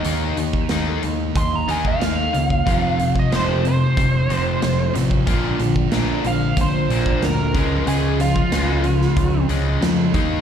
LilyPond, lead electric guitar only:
\new Staff \with { instrumentName = "Lead electric guitar" } { \time 4/4 \key des \lydian \tempo 4 = 92 des''4 r4 c'''16 bes''16 aes''16 f''4~ f''16~ | f''8. ees''16 c''8 c''2 r8 | r4. f''8 c''4 bes'4 | aes'8 f'2 r4. | }